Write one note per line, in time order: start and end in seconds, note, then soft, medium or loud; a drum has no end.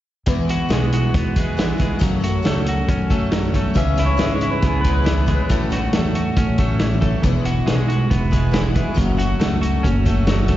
0.26 0.63 E2 medium
0.26 1.36 E2 medium
0.26 0.49 E3 medium
0.26 0.49 G#3 medium
0.26 0.49 B3 medium
0.26 0.48 E4 medium
0.26 0.46 F#4 medium
0.26 kick loud
0.26 closed hi-hat medium
0.47 0.69 B3 soft
0.47 0.70 E4 medium
0.47 0.70 F#4 soft
0.47 0.92 F#4 medium
0.47 closed hi-hat medium
0.68 1.05 B1 medium
0.68 1.35 G#3 medium
0.68 1.36 G#3 medium
0.68 1.36 B3 medium
0.68 1.36 E4 medium
0.68 1.35 F#4 medium
0.68 snare medium
0.68 closed hi-hat medium
0.93 2.02 F#4 medium
0.93 closed hi-hat medium
1.14 1.85 E2 loud
1.14 2.03 B3 medium
1.14 kick loud
1.14 closed hi-hat medium
1.36 1.80 G#3 medium
1.36 1.56 B3 medium
1.36 1.58 E4 soft
1.36 1.58 F#4 medium
1.36 kick medium
1.36 closed hi-hat medium
1.57 2.02 E3 medium
1.57 1.79 G#3 medium
1.57 1.80 B3 medium
1.57 1.77 E4 medium
1.57 1.76 F#4 medium
1.57 snare loud
1.57 closed hi-hat medium
1.78 2.02 G#3 medium
1.78 2.00 B3 soft
1.78 2.01 E4 soft
1.78 2.00 F#4 medium
1.78 kick medium
1.78 closed hi-hat medium
1.99 2.22 F#2 medium
1.99 2.37 F#2 medium
1.99 2.22 C#3 medium
1.99 2.22 F#3 medium
1.99 2.21 A3 medium
1.99 2.20 C#4 medium
1.99 2.19 F#4 medium
1.99 kick loud
1.99 closed hi-hat medium
2.03 3.11 F#2 medium
2.21 2.41 F#3 soft
2.21 2.42 A3 soft
2.21 2.44 C#4 soft
2.21 2.44 F#4 medium
2.21 2.68 F#4 medium
2.21 closed hi-hat medium
2.42 2.80 C#2 medium
2.42 3.09 F#3 medium
2.42 3.09 A3 medium
2.42 3.10 A3 medium
2.42 3.10 C#4 medium
2.42 3.09 F#4 medium
2.42 snare loud
2.42 closed hi-hat medium
2.67 3.77 F#4 medium
2.67 closed hi-hat medium
2.88 3.60 F#2 loud
2.88 4.63 C#4 medium
2.88 kick loud
2.88 closed hi-hat medium
3.10 3.30 F#3 soft
3.10 3.54 A3 medium
3.10 3.31 A3 medium
3.10 3.32 C#4 medium
3.10 3.32 F#4 medium
3.10 kick medium
3.10 closed hi-hat medium
3.31 3.54 F#3 medium
3.31 3.76 F#3 medium
3.31 3.54 A3 medium
3.31 3.53 C#4 medium
3.31 3.52 F#4 medium
3.31 snare loud
3.31 closed hi-hat medium
3.53 3.74 F#3 soft
3.53 3.75 A3 soft
3.53 3.77 A3 medium
3.53 3.74 C#4 medium
3.53 3.75 F#4 soft
3.53 kick medium
3.53 closed hi-hat medium
3.74 4.11 C#2 medium
3.74 3.97 C#3 medium
3.74 4.85 C#3 medium
3.74 3.97 E3 medium
3.74 3.97 B3 medium
3.74 3.96 C#4 medium
3.74 3.94 G#4 medium
3.74 4.04 E5 loud
3.74 kick medium
3.74 closed hi-hat medium
3.95 4.16 B3 soft
3.95 4.16 C#4 medium
3.95 4.42 E4 medium
3.95 4.17 G#4 medium
3.95 snare soft
3.95 closed hi-hat medium
4.05 4.20 C#5 medium
4.16 4.55 G#1 medium
4.16 5.03 E3 medium
4.16 4.84 G#3 medium
4.16 4.84 B3 medium
4.16 4.83 C#4 medium
4.16 4.83 G#4 medium
4.16 4.34 E5 medium
4.16 snare loud
4.16 closed hi-hat medium
4.35 4.51 C#5 medium
4.41 5.72 E4 medium
4.41 closed hi-hat medium
4.51 4.67 B4 medium
4.62 5.34 C#2 loud
4.62 5.50 B3 medium
4.62 kick medium
4.62 closed hi-hat medium
4.67 4.79 G#4 medium
4.81 5.05 C#4 medium
4.81 5.06 G#4 medium
4.81 4.91 B4 medium
4.81 kick medium
4.81 closed hi-hat medium
4.85 5.27 G#3 medium
4.85 5.04 B3 soft
4.93 5.77 B4 medium
5.04 5.27 E3 medium
5.04 5.76 E3 medium
5.04 5.27 B3 medium
5.04 5.26 C#4 medium
5.04 5.25 G#4 medium
5.04 snare loud
5.04 closed hi-hat medium
5.26 5.50 G#3 medium
5.26 5.50 B3 soft
5.26 5.50 C#4 medium
5.26 5.49 G#4 medium
5.26 kick medium
5.26 closed hi-hat medium
5.49 5.85 A1 medium
5.49 5.71 A2 medium
5.49 6.58 A2 medium
5.49 5.71 E3 medium
5.49 5.71 F#3 medium
5.49 5.70 A3 medium
5.49 5.69 C#4 medium
5.49 5.69 F#4 medium
5.49 kick loud
5.49 closed hi-hat medium
5.70 5.94 F#3 soft
5.70 5.93 A3 soft
5.70 5.93 C#4 soft
5.70 5.92 F#4 medium
5.70 6.15 F#4 medium
5.70 snare soft
5.70 closed hi-hat medium
5.93 6.29 E2 medium
5.93 6.61 F#3 medium
5.93 6.57 A3 medium
5.93 6.59 A3 medium
5.93 6.59 C#4 medium
5.93 6.58 F#4 medium
5.93 snare medium
5.93 closed hi-hat medium
6.15 7.25 F#4 medium
6.15 closed hi-hat medium
6.37 7.08 A1 loud
6.37 7.24 C#4 medium
6.37 kick loud
6.37 closed hi-hat medium
6.58 6.80 F#3 medium
6.58 7.00 A3 medium
6.58 6.81 A3 soft
6.58 6.81 C#4 medium
6.58 6.80 F#4 medium
6.58 kick medium
6.58 closed hi-hat medium
6.80 7.23 E3 medium
6.80 7.03 F#3 medium
6.80 7.02 A3 medium
6.80 7.01 C#4 medium
6.80 7.01 F#4 medium
6.80 snare medium
6.80 closed hi-hat medium
7.01 7.23 F#3 soft
7.01 7.23 A3 medium
7.01 7.24 A3 soft
7.01 7.24 C#4 medium
7.01 7.24 F#4 medium
7.01 kick medium
7.01 closed hi-hat medium
7.22 7.59 E1 medium
7.22 8.32 E2 medium
7.22 7.45 E3 medium
7.22 7.46 G#3 medium
7.22 7.46 B3 medium
7.22 7.46 E4 medium
7.22 7.45 F#4 medium
7.22 kick medium
7.22 closed hi-hat medium
7.45 7.66 B3 soft
7.45 7.68 E4 soft
7.45 7.87 F#4 medium
7.45 7.68 F#4 soft
7.45 closed hi-hat medium
7.66 8.03 B1 medium
7.66 8.31 G#3 medium
7.66 8.32 G#3 medium
7.66 8.32 B3 medium
7.66 8.31 E4 medium
7.66 8.29 F#4 medium
7.66 snare medium
7.66 closed hi-hat medium
7.88 8.97 F#4 medium
7.88 closed hi-hat medium
8.10 8.82 E1 loud
8.10 8.97 B3 medium
8.10 kick loud
8.10 closed hi-hat medium
8.31 8.74 G#3 medium
8.31 8.50 B3 soft
8.31 8.52 E4 medium
8.31 8.52 F#4 medium
8.31 kick medium
8.31 closed hi-hat medium
8.51 8.97 E3 medium
8.51 8.74 G#3 soft
8.51 8.75 B3 medium
8.51 8.75 E4 medium
8.51 8.73 F#4 medium
8.51 snare loud
8.51 closed hi-hat medium
8.74 8.97 G#3 medium
8.74 8.95 B3 soft
8.74 8.96 E4 soft
8.74 8.96 F#4 medium
8.74 kick medium
8.74 closed hi-hat medium
8.94 9.33 F#1 medium
8.94 9.18 F#2 medium
8.94 10.06 F#2 medium
8.94 9.18 C#3 medium
8.94 9.18 F#3 medium
8.94 9.17 A3 medium
8.94 9.16 C#4 medium
8.94 9.16 F#4 medium
8.94 kick loud
8.94 closed hi-hat medium
9.17 9.38 F#3 soft
9.17 9.39 A3 soft
9.17 9.40 C#4 medium
9.17 9.40 F#4 medium
9.17 9.60 F#4 medium
9.17 closed hi-hat medium
9.40 9.76 C#2 medium
9.40 10.06 F#3 medium
9.40 10.05 A3 medium
9.40 10.06 A3 medium
9.40 10.07 C#4 medium
9.40 10.04 F#4 medium
9.40 snare medium
9.40 closed hi-hat medium
9.61 10.57 F#4 medium
9.61 closed hi-hat medium
9.83 10.56 F#1 loud
9.83 10.57 C#4 medium
9.83 kick loud
9.83 closed hi-hat medium
10.05 10.26 F#3 soft
10.05 10.48 A3 medium
10.05 10.27 A3 soft
10.05 10.29 C#4 medium
10.05 10.28 F#4 medium
10.05 kick medium
10.05 closed hi-hat medium
10.27 10.48 F#3 medium
10.27 10.57 F#3 medium
10.27 10.48 A3 medium
10.27 10.47 C#4 medium
10.27 10.46 F#4 medium
10.27 snare loud
10.27 closed hi-hat medium
10.47 10.57 F#3 soft
10.47 10.57 A3 soft
10.47 10.57 A3 medium
10.47 10.57 C#4 soft
10.47 10.57 F#4 soft
10.47 kick medium
10.47 closed hi-hat medium